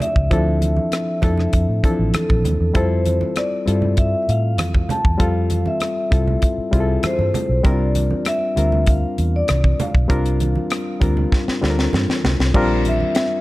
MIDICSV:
0, 0, Header, 1, 6, 480
1, 0, Start_track
1, 0, Key_signature, -1, "major"
1, 0, Tempo, 611621
1, 243, Time_signature, 4, 2, 24, 8
1, 10523, End_track
2, 0, Start_track
2, 0, Title_t, "Vibraphone"
2, 0, Program_c, 0, 11
2, 14, Note_on_c, 0, 76, 80
2, 1416, Note_off_c, 0, 76, 0
2, 1689, Note_on_c, 0, 69, 65
2, 2134, Note_off_c, 0, 69, 0
2, 2167, Note_on_c, 0, 72, 79
2, 2646, Note_on_c, 0, 74, 93
2, 2658, Note_off_c, 0, 72, 0
2, 3128, Note_on_c, 0, 76, 86
2, 3138, Note_off_c, 0, 74, 0
2, 3306, Note_off_c, 0, 76, 0
2, 3315, Note_on_c, 0, 76, 62
2, 3366, Note_off_c, 0, 76, 0
2, 3373, Note_on_c, 0, 77, 97
2, 3854, Note_on_c, 0, 81, 89
2, 3862, Note_off_c, 0, 77, 0
2, 4095, Note_off_c, 0, 81, 0
2, 4095, Note_on_c, 0, 77, 89
2, 4451, Note_on_c, 0, 76, 79
2, 4459, Note_off_c, 0, 77, 0
2, 5537, Note_on_c, 0, 72, 78
2, 5559, Note_off_c, 0, 76, 0
2, 5978, Note_off_c, 0, 72, 0
2, 6017, Note_on_c, 0, 74, 85
2, 6458, Note_off_c, 0, 74, 0
2, 6498, Note_on_c, 0, 76, 95
2, 6984, Note_off_c, 0, 76, 0
2, 6985, Note_on_c, 0, 77, 85
2, 7344, Note_off_c, 0, 77, 0
2, 7346, Note_on_c, 0, 74, 92
2, 7705, Note_off_c, 0, 74, 0
2, 7708, Note_on_c, 0, 77, 78
2, 9105, Note_off_c, 0, 77, 0
2, 10110, Note_on_c, 0, 76, 81
2, 10523, Note_off_c, 0, 76, 0
2, 10523, End_track
3, 0, Start_track
3, 0, Title_t, "Reed electric piano"
3, 0, Program_c, 1, 4
3, 0, Control_c, 1, 64, 127
3, 0, Note_on_c, 1, 60, 57
3, 0, Note_on_c, 1, 62, 61
3, 0, Note_on_c, 1, 65, 60
3, 0, Note_on_c, 1, 69, 63
3, 241, Note_on_c, 1, 53, 97
3, 245, Note_off_c, 1, 60, 0
3, 245, Note_on_c, 1, 60, 78
3, 247, Note_off_c, 1, 62, 0
3, 247, Note_on_c, 1, 62, 81
3, 256, Note_on_c, 1, 64, 83
3, 260, Note_off_c, 1, 69, 0
3, 260, Note_on_c, 1, 69, 98
3, 773, Note_off_c, 1, 53, 0
3, 775, Note_off_c, 1, 60, 0
3, 776, Note_off_c, 1, 62, 0
3, 781, Note_off_c, 1, 64, 0
3, 783, Note_off_c, 1, 69, 0
3, 954, Note_on_c, 1, 53, 72
3, 960, Note_on_c, 1, 60, 61
3, 965, Note_on_c, 1, 62, 61
3, 970, Note_on_c, 1, 64, 65
3, 974, Note_on_c, 1, 69, 87
3, 1312, Note_off_c, 1, 53, 0
3, 1316, Note_off_c, 1, 60, 0
3, 1318, Note_off_c, 1, 62, 0
3, 1320, Note_off_c, 1, 64, 0
3, 1322, Note_off_c, 1, 69, 0
3, 1436, Note_on_c, 1, 52, 56
3, 1439, Note_on_c, 1, 60, 62
3, 1447, Note_on_c, 1, 62, 65
3, 1451, Note_on_c, 1, 64, 67
3, 1454, Note_on_c, 1, 69, 81
3, 1489, Note_on_c, 1, 53, 71
3, 1490, Note_off_c, 1, 52, 0
3, 1972, Note_off_c, 1, 60, 0
3, 1976, Note_off_c, 1, 62, 0
3, 1978, Note_off_c, 1, 64, 0
3, 1980, Note_off_c, 1, 69, 0
3, 1997, Note_off_c, 1, 53, 0
3, 2147, Note_on_c, 1, 55, 91
3, 2153, Note_on_c, 1, 60, 81
3, 2161, Note_off_c, 1, 65, 0
3, 2161, Note_on_c, 1, 64, 81
3, 2161, Note_on_c, 1, 65, 80
3, 2169, Note_on_c, 1, 69, 101
3, 2171, Control_c, 1, 64, 0
3, 2295, Control_c, 1, 64, 127
3, 2686, Note_off_c, 1, 55, 0
3, 2689, Note_off_c, 1, 60, 0
3, 2693, Note_off_c, 1, 64, 0
3, 2693, Note_off_c, 1, 65, 0
3, 2697, Note_off_c, 1, 69, 0
3, 2870, Note_on_c, 1, 55, 64
3, 2872, Note_on_c, 1, 60, 61
3, 2880, Note_on_c, 1, 64, 53
3, 2886, Note_on_c, 1, 65, 58
3, 2891, Note_on_c, 1, 69, 60
3, 3584, Note_off_c, 1, 55, 0
3, 3586, Note_off_c, 1, 60, 0
3, 3590, Note_off_c, 1, 64, 0
3, 3593, Note_off_c, 1, 65, 0
3, 3595, Note_off_c, 1, 69, 0
3, 4065, Note_on_c, 1, 55, 86
3, 4068, Note_on_c, 1, 60, 81
3, 4077, Note_on_c, 1, 65, 86
3, 4082, Note_on_c, 1, 69, 95
3, 4605, Note_off_c, 1, 55, 0
3, 4607, Note_off_c, 1, 60, 0
3, 4611, Note_off_c, 1, 65, 0
3, 4613, Note_off_c, 1, 69, 0
3, 4791, Note_on_c, 1, 55, 57
3, 4796, Note_on_c, 1, 60, 58
3, 4798, Note_on_c, 1, 64, 56
3, 4805, Note_on_c, 1, 65, 55
3, 4808, Note_on_c, 1, 69, 68
3, 5151, Note_off_c, 1, 55, 0
3, 5153, Note_off_c, 1, 60, 0
3, 5155, Note_off_c, 1, 64, 0
3, 5158, Note_off_c, 1, 65, 0
3, 5159, Note_off_c, 1, 69, 0
3, 5270, Note_on_c, 1, 55, 75
3, 5275, Note_on_c, 1, 60, 67
3, 5278, Note_on_c, 1, 64, 67
3, 5282, Note_on_c, 1, 65, 68
3, 5286, Note_on_c, 1, 68, 64
3, 5335, Note_off_c, 1, 68, 0
3, 5338, Note_on_c, 1, 69, 82
3, 5808, Note_off_c, 1, 55, 0
3, 5810, Note_off_c, 1, 60, 0
3, 5812, Note_off_c, 1, 64, 0
3, 5814, Note_off_c, 1, 65, 0
3, 5842, Note_off_c, 1, 69, 0
3, 5990, Note_on_c, 1, 55, 86
3, 5996, Note_on_c, 1, 60, 90
3, 6000, Note_on_c, 1, 62, 80
3, 6006, Note_on_c, 1, 64, 65
3, 6011, Note_on_c, 1, 70, 98
3, 6014, Control_c, 1, 64, 0
3, 6055, Note_off_c, 1, 64, 0
3, 6055, Note_on_c, 1, 65, 78
3, 6152, Control_c, 1, 64, 127
3, 6528, Note_off_c, 1, 55, 0
3, 6531, Note_off_c, 1, 60, 0
3, 6533, Note_off_c, 1, 62, 0
3, 6538, Note_off_c, 1, 70, 0
3, 6560, Note_off_c, 1, 65, 0
3, 6717, Note_on_c, 1, 55, 67
3, 6720, Note_on_c, 1, 60, 61
3, 6723, Note_on_c, 1, 62, 55
3, 6729, Note_on_c, 1, 65, 60
3, 6734, Note_on_c, 1, 70, 74
3, 7429, Note_off_c, 1, 55, 0
3, 7431, Note_off_c, 1, 60, 0
3, 7432, Note_off_c, 1, 62, 0
3, 7435, Note_off_c, 1, 65, 0
3, 7438, Note_off_c, 1, 70, 0
3, 7911, Note_on_c, 1, 55, 90
3, 7914, Note_on_c, 1, 60, 79
3, 7920, Note_on_c, 1, 62, 88
3, 7922, Note_on_c, 1, 65, 84
3, 7925, Note_on_c, 1, 70, 102
3, 8449, Note_off_c, 1, 55, 0
3, 8451, Note_off_c, 1, 60, 0
3, 8453, Note_off_c, 1, 62, 0
3, 8454, Note_off_c, 1, 65, 0
3, 8456, Note_off_c, 1, 70, 0
3, 8633, Note_on_c, 1, 55, 72
3, 8639, Note_on_c, 1, 60, 63
3, 8645, Note_on_c, 1, 62, 65
3, 8645, Note_on_c, 1, 65, 66
3, 8652, Note_on_c, 1, 70, 73
3, 8993, Note_off_c, 1, 55, 0
3, 8996, Note_off_c, 1, 60, 0
3, 8999, Note_off_c, 1, 62, 0
3, 8999, Note_off_c, 1, 65, 0
3, 9002, Note_off_c, 1, 70, 0
3, 9114, Note_on_c, 1, 55, 74
3, 9115, Note_on_c, 1, 60, 66
3, 9125, Note_on_c, 1, 62, 70
3, 9127, Note_on_c, 1, 65, 71
3, 9132, Note_on_c, 1, 69, 65
3, 9179, Note_off_c, 1, 69, 0
3, 9184, Note_on_c, 1, 70, 82
3, 9651, Note_off_c, 1, 55, 0
3, 9651, Note_off_c, 1, 60, 0
3, 9657, Note_off_c, 1, 62, 0
3, 9657, Note_off_c, 1, 65, 0
3, 9686, Note_off_c, 1, 70, 0
3, 9841, Note_on_c, 1, 55, 103
3, 9848, Note_on_c, 1, 60, 99
3, 9849, Note_on_c, 1, 62, 98
3, 9855, Control_c, 1, 64, 0
3, 9856, Note_on_c, 1, 65, 105
3, 9861, Note_on_c, 1, 70, 123
3, 9975, Control_c, 1, 64, 127
3, 10523, Note_off_c, 1, 55, 0
3, 10523, Note_off_c, 1, 60, 0
3, 10523, Note_off_c, 1, 62, 0
3, 10523, Note_off_c, 1, 65, 0
3, 10523, Note_off_c, 1, 70, 0
3, 10523, End_track
4, 0, Start_track
4, 0, Title_t, "Fingered electric bass"
4, 0, Program_c, 2, 33
4, 126, Note_on_c, 2, 37, 84
4, 216, Note_off_c, 2, 37, 0
4, 245, Note_on_c, 2, 38, 82
4, 609, Note_off_c, 2, 38, 0
4, 964, Note_on_c, 2, 41, 66
4, 1146, Note_off_c, 2, 41, 0
4, 1206, Note_on_c, 2, 41, 79
4, 1296, Note_off_c, 2, 41, 0
4, 1322, Note_on_c, 2, 45, 72
4, 1414, Note_off_c, 2, 45, 0
4, 1562, Note_on_c, 2, 33, 76
4, 1653, Note_off_c, 2, 33, 0
4, 1807, Note_on_c, 2, 34, 71
4, 1896, Note_off_c, 2, 34, 0
4, 1916, Note_on_c, 2, 39, 77
4, 2010, Note_off_c, 2, 39, 0
4, 2044, Note_on_c, 2, 40, 85
4, 2134, Note_off_c, 2, 40, 0
4, 2160, Note_on_c, 2, 41, 90
4, 2526, Note_off_c, 2, 41, 0
4, 2883, Note_on_c, 2, 43, 77
4, 3247, Note_off_c, 2, 43, 0
4, 3363, Note_on_c, 2, 45, 77
4, 3598, Note_off_c, 2, 45, 0
4, 3598, Note_on_c, 2, 41, 86
4, 3782, Note_off_c, 2, 41, 0
4, 3964, Note_on_c, 2, 40, 78
4, 4055, Note_off_c, 2, 40, 0
4, 4082, Note_on_c, 2, 41, 77
4, 4447, Note_off_c, 2, 41, 0
4, 4804, Note_on_c, 2, 36, 66
4, 4986, Note_off_c, 2, 36, 0
4, 5281, Note_on_c, 2, 36, 75
4, 5464, Note_off_c, 2, 36, 0
4, 5641, Note_on_c, 2, 43, 81
4, 5733, Note_off_c, 2, 43, 0
4, 5880, Note_on_c, 2, 35, 78
4, 5972, Note_off_c, 2, 35, 0
4, 6005, Note_on_c, 2, 36, 83
4, 6369, Note_off_c, 2, 36, 0
4, 6725, Note_on_c, 2, 38, 75
4, 7089, Note_off_c, 2, 38, 0
4, 7208, Note_on_c, 2, 40, 75
4, 7388, Note_off_c, 2, 40, 0
4, 7452, Note_on_c, 2, 36, 84
4, 7631, Note_off_c, 2, 36, 0
4, 7806, Note_on_c, 2, 35, 74
4, 7896, Note_off_c, 2, 35, 0
4, 7926, Note_on_c, 2, 36, 93
4, 8290, Note_off_c, 2, 36, 0
4, 8645, Note_on_c, 2, 38, 76
4, 8827, Note_off_c, 2, 38, 0
4, 9126, Note_on_c, 2, 38, 77
4, 9308, Note_off_c, 2, 38, 0
4, 9366, Note_on_c, 2, 43, 91
4, 9457, Note_off_c, 2, 43, 0
4, 9605, Note_on_c, 2, 36, 71
4, 9696, Note_off_c, 2, 36, 0
4, 9726, Note_on_c, 2, 36, 81
4, 9817, Note_off_c, 2, 36, 0
4, 9849, Note_on_c, 2, 34, 83
4, 10213, Note_off_c, 2, 34, 0
4, 10523, End_track
5, 0, Start_track
5, 0, Title_t, "Muted fingered electric bass strokes"
5, 5162, Note_on_c, 9, 29, 39
5, 5241, Note_off_c, 9, 29, 0
5, 5523, Note_on_c, 9, 29, 45
5, 5602, Note_off_c, 9, 29, 0
5, 9008, Note_on_c, 9, 29, 38
5, 9086, Note_off_c, 9, 29, 0
5, 10523, End_track
6, 0, Start_track
6, 0, Title_t, "Drums"
6, 2, Note_on_c, 9, 64, 66
6, 13, Note_on_c, 9, 42, 59
6, 80, Note_off_c, 9, 64, 0
6, 92, Note_off_c, 9, 42, 0
6, 125, Note_on_c, 9, 36, 77
6, 203, Note_off_c, 9, 36, 0
6, 244, Note_on_c, 9, 36, 104
6, 248, Note_on_c, 9, 42, 74
6, 323, Note_off_c, 9, 36, 0
6, 327, Note_off_c, 9, 42, 0
6, 484, Note_on_c, 9, 63, 55
6, 486, Note_on_c, 9, 42, 61
6, 562, Note_off_c, 9, 63, 0
6, 565, Note_off_c, 9, 42, 0
6, 601, Note_on_c, 9, 63, 53
6, 679, Note_off_c, 9, 63, 0
6, 722, Note_on_c, 9, 42, 81
6, 722, Note_on_c, 9, 62, 27
6, 732, Note_on_c, 9, 37, 82
6, 800, Note_off_c, 9, 42, 0
6, 801, Note_off_c, 9, 62, 0
6, 810, Note_off_c, 9, 37, 0
6, 957, Note_on_c, 9, 62, 28
6, 957, Note_on_c, 9, 64, 67
6, 964, Note_on_c, 9, 36, 93
6, 968, Note_on_c, 9, 42, 70
6, 1035, Note_off_c, 9, 62, 0
6, 1035, Note_off_c, 9, 64, 0
6, 1042, Note_off_c, 9, 36, 0
6, 1046, Note_off_c, 9, 42, 0
6, 1079, Note_on_c, 9, 64, 53
6, 1094, Note_on_c, 9, 37, 35
6, 1158, Note_off_c, 9, 64, 0
6, 1173, Note_off_c, 9, 37, 0
6, 1199, Note_on_c, 9, 42, 80
6, 1204, Note_on_c, 9, 36, 79
6, 1278, Note_off_c, 9, 42, 0
6, 1283, Note_off_c, 9, 36, 0
6, 1442, Note_on_c, 9, 36, 78
6, 1447, Note_on_c, 9, 42, 60
6, 1521, Note_off_c, 9, 36, 0
6, 1525, Note_off_c, 9, 42, 0
6, 1677, Note_on_c, 9, 42, 88
6, 1680, Note_on_c, 9, 62, 30
6, 1680, Note_on_c, 9, 63, 63
6, 1684, Note_on_c, 9, 37, 102
6, 1756, Note_off_c, 9, 42, 0
6, 1758, Note_off_c, 9, 62, 0
6, 1758, Note_off_c, 9, 63, 0
6, 1762, Note_off_c, 9, 37, 0
6, 1799, Note_on_c, 9, 63, 58
6, 1804, Note_on_c, 9, 36, 77
6, 1878, Note_off_c, 9, 63, 0
6, 1882, Note_off_c, 9, 36, 0
6, 1920, Note_on_c, 9, 64, 66
6, 1925, Note_on_c, 9, 42, 58
6, 1999, Note_off_c, 9, 64, 0
6, 2003, Note_off_c, 9, 42, 0
6, 2157, Note_on_c, 9, 42, 68
6, 2159, Note_on_c, 9, 36, 110
6, 2235, Note_off_c, 9, 42, 0
6, 2238, Note_off_c, 9, 36, 0
6, 2398, Note_on_c, 9, 42, 67
6, 2404, Note_on_c, 9, 62, 29
6, 2404, Note_on_c, 9, 63, 52
6, 2477, Note_off_c, 9, 42, 0
6, 2482, Note_off_c, 9, 62, 0
6, 2482, Note_off_c, 9, 63, 0
6, 2518, Note_on_c, 9, 63, 61
6, 2597, Note_off_c, 9, 63, 0
6, 2635, Note_on_c, 9, 42, 76
6, 2636, Note_on_c, 9, 62, 29
6, 2645, Note_on_c, 9, 37, 83
6, 2713, Note_off_c, 9, 42, 0
6, 2715, Note_off_c, 9, 62, 0
6, 2723, Note_off_c, 9, 37, 0
6, 2885, Note_on_c, 9, 42, 70
6, 2963, Note_off_c, 9, 42, 0
6, 2996, Note_on_c, 9, 64, 49
6, 3075, Note_off_c, 9, 64, 0
6, 3116, Note_on_c, 9, 42, 83
6, 3120, Note_on_c, 9, 62, 27
6, 3122, Note_on_c, 9, 36, 73
6, 3195, Note_off_c, 9, 42, 0
6, 3198, Note_off_c, 9, 62, 0
6, 3201, Note_off_c, 9, 36, 0
6, 3366, Note_on_c, 9, 42, 55
6, 3445, Note_off_c, 9, 42, 0
6, 3597, Note_on_c, 9, 42, 93
6, 3597, Note_on_c, 9, 63, 69
6, 3604, Note_on_c, 9, 37, 101
6, 3676, Note_off_c, 9, 42, 0
6, 3676, Note_off_c, 9, 63, 0
6, 3682, Note_off_c, 9, 37, 0
6, 3721, Note_on_c, 9, 63, 57
6, 3724, Note_on_c, 9, 36, 72
6, 3799, Note_off_c, 9, 63, 0
6, 3803, Note_off_c, 9, 36, 0
6, 3838, Note_on_c, 9, 64, 72
6, 3847, Note_on_c, 9, 42, 59
6, 3917, Note_off_c, 9, 64, 0
6, 3925, Note_off_c, 9, 42, 0
6, 3961, Note_on_c, 9, 36, 79
6, 4040, Note_off_c, 9, 36, 0
6, 4076, Note_on_c, 9, 62, 28
6, 4080, Note_on_c, 9, 36, 104
6, 4080, Note_on_c, 9, 42, 75
6, 4154, Note_off_c, 9, 62, 0
6, 4158, Note_off_c, 9, 42, 0
6, 4159, Note_off_c, 9, 36, 0
6, 4315, Note_on_c, 9, 42, 67
6, 4323, Note_on_c, 9, 63, 62
6, 4394, Note_off_c, 9, 42, 0
6, 4402, Note_off_c, 9, 63, 0
6, 4439, Note_on_c, 9, 63, 60
6, 4517, Note_off_c, 9, 63, 0
6, 4555, Note_on_c, 9, 42, 74
6, 4558, Note_on_c, 9, 62, 30
6, 4565, Note_on_c, 9, 37, 86
6, 4633, Note_off_c, 9, 42, 0
6, 4636, Note_off_c, 9, 62, 0
6, 4643, Note_off_c, 9, 37, 0
6, 4802, Note_on_c, 9, 36, 100
6, 4804, Note_on_c, 9, 62, 28
6, 4805, Note_on_c, 9, 42, 77
6, 4881, Note_off_c, 9, 36, 0
6, 4882, Note_off_c, 9, 62, 0
6, 4884, Note_off_c, 9, 42, 0
6, 4924, Note_on_c, 9, 64, 53
6, 5002, Note_off_c, 9, 64, 0
6, 5038, Note_on_c, 9, 42, 82
6, 5043, Note_on_c, 9, 36, 74
6, 5117, Note_off_c, 9, 42, 0
6, 5122, Note_off_c, 9, 36, 0
6, 5281, Note_on_c, 9, 36, 81
6, 5282, Note_on_c, 9, 42, 54
6, 5359, Note_off_c, 9, 36, 0
6, 5360, Note_off_c, 9, 42, 0
6, 5517, Note_on_c, 9, 42, 90
6, 5520, Note_on_c, 9, 63, 69
6, 5523, Note_on_c, 9, 37, 92
6, 5595, Note_off_c, 9, 42, 0
6, 5598, Note_off_c, 9, 63, 0
6, 5602, Note_off_c, 9, 37, 0
6, 5640, Note_on_c, 9, 63, 55
6, 5719, Note_off_c, 9, 63, 0
6, 5762, Note_on_c, 9, 64, 73
6, 5768, Note_on_c, 9, 42, 62
6, 5840, Note_off_c, 9, 64, 0
6, 5846, Note_off_c, 9, 42, 0
6, 6000, Note_on_c, 9, 42, 67
6, 6000, Note_on_c, 9, 62, 30
6, 6001, Note_on_c, 9, 36, 101
6, 6078, Note_off_c, 9, 42, 0
6, 6078, Note_off_c, 9, 62, 0
6, 6080, Note_off_c, 9, 36, 0
6, 6240, Note_on_c, 9, 42, 68
6, 6246, Note_on_c, 9, 62, 29
6, 6246, Note_on_c, 9, 63, 57
6, 6319, Note_off_c, 9, 42, 0
6, 6325, Note_off_c, 9, 62, 0
6, 6325, Note_off_c, 9, 63, 0
6, 6361, Note_on_c, 9, 63, 61
6, 6440, Note_off_c, 9, 63, 0
6, 6476, Note_on_c, 9, 42, 84
6, 6480, Note_on_c, 9, 62, 31
6, 6486, Note_on_c, 9, 37, 86
6, 6554, Note_off_c, 9, 42, 0
6, 6559, Note_off_c, 9, 62, 0
6, 6564, Note_off_c, 9, 37, 0
6, 6727, Note_on_c, 9, 42, 70
6, 6806, Note_off_c, 9, 42, 0
6, 6845, Note_on_c, 9, 64, 51
6, 6924, Note_off_c, 9, 64, 0
6, 6957, Note_on_c, 9, 42, 84
6, 6964, Note_on_c, 9, 36, 85
6, 6967, Note_on_c, 9, 62, 26
6, 7036, Note_off_c, 9, 42, 0
6, 7043, Note_off_c, 9, 36, 0
6, 7045, Note_off_c, 9, 62, 0
6, 7206, Note_on_c, 9, 42, 54
6, 7285, Note_off_c, 9, 42, 0
6, 7440, Note_on_c, 9, 42, 90
6, 7444, Note_on_c, 9, 63, 65
6, 7447, Note_on_c, 9, 37, 98
6, 7519, Note_off_c, 9, 42, 0
6, 7523, Note_off_c, 9, 63, 0
6, 7525, Note_off_c, 9, 37, 0
6, 7566, Note_on_c, 9, 36, 79
6, 7567, Note_on_c, 9, 63, 52
6, 7644, Note_off_c, 9, 36, 0
6, 7646, Note_off_c, 9, 63, 0
6, 7688, Note_on_c, 9, 42, 61
6, 7689, Note_on_c, 9, 64, 77
6, 7766, Note_off_c, 9, 42, 0
6, 7767, Note_off_c, 9, 64, 0
6, 7805, Note_on_c, 9, 36, 83
6, 7884, Note_off_c, 9, 36, 0
6, 7925, Note_on_c, 9, 36, 113
6, 7927, Note_on_c, 9, 42, 73
6, 8003, Note_off_c, 9, 36, 0
6, 8005, Note_off_c, 9, 42, 0
6, 8049, Note_on_c, 9, 42, 52
6, 8127, Note_off_c, 9, 42, 0
6, 8165, Note_on_c, 9, 42, 62
6, 8169, Note_on_c, 9, 63, 63
6, 8243, Note_off_c, 9, 42, 0
6, 8248, Note_off_c, 9, 63, 0
6, 8284, Note_on_c, 9, 63, 61
6, 8362, Note_off_c, 9, 63, 0
6, 8401, Note_on_c, 9, 42, 80
6, 8411, Note_on_c, 9, 37, 92
6, 8479, Note_off_c, 9, 42, 0
6, 8489, Note_off_c, 9, 37, 0
6, 8645, Note_on_c, 9, 36, 92
6, 8648, Note_on_c, 9, 42, 66
6, 8723, Note_off_c, 9, 36, 0
6, 8727, Note_off_c, 9, 42, 0
6, 8766, Note_on_c, 9, 64, 56
6, 8844, Note_off_c, 9, 64, 0
6, 8887, Note_on_c, 9, 36, 82
6, 8892, Note_on_c, 9, 38, 44
6, 8965, Note_off_c, 9, 36, 0
6, 8971, Note_off_c, 9, 38, 0
6, 9011, Note_on_c, 9, 38, 49
6, 9090, Note_off_c, 9, 38, 0
6, 9123, Note_on_c, 9, 62, 33
6, 9133, Note_on_c, 9, 38, 65
6, 9201, Note_off_c, 9, 62, 0
6, 9212, Note_off_c, 9, 38, 0
6, 9252, Note_on_c, 9, 38, 58
6, 9331, Note_off_c, 9, 38, 0
6, 9363, Note_on_c, 9, 62, 31
6, 9363, Note_on_c, 9, 63, 73
6, 9373, Note_on_c, 9, 38, 74
6, 9442, Note_off_c, 9, 62, 0
6, 9442, Note_off_c, 9, 63, 0
6, 9451, Note_off_c, 9, 38, 0
6, 9483, Note_on_c, 9, 63, 54
6, 9495, Note_on_c, 9, 38, 66
6, 9562, Note_off_c, 9, 63, 0
6, 9574, Note_off_c, 9, 38, 0
6, 9609, Note_on_c, 9, 64, 78
6, 9612, Note_on_c, 9, 38, 86
6, 9688, Note_off_c, 9, 64, 0
6, 9690, Note_off_c, 9, 38, 0
6, 9734, Note_on_c, 9, 38, 73
6, 9812, Note_off_c, 9, 38, 0
6, 9845, Note_on_c, 9, 36, 109
6, 9845, Note_on_c, 9, 62, 29
6, 9846, Note_on_c, 9, 49, 87
6, 9923, Note_off_c, 9, 36, 0
6, 9923, Note_off_c, 9, 62, 0
6, 9925, Note_off_c, 9, 49, 0
6, 10085, Note_on_c, 9, 42, 72
6, 10089, Note_on_c, 9, 63, 57
6, 10164, Note_off_c, 9, 42, 0
6, 10167, Note_off_c, 9, 63, 0
6, 10206, Note_on_c, 9, 63, 58
6, 10285, Note_off_c, 9, 63, 0
6, 10319, Note_on_c, 9, 42, 89
6, 10324, Note_on_c, 9, 62, 31
6, 10329, Note_on_c, 9, 38, 96
6, 10397, Note_off_c, 9, 42, 0
6, 10403, Note_off_c, 9, 62, 0
6, 10407, Note_off_c, 9, 38, 0
6, 10523, End_track
0, 0, End_of_file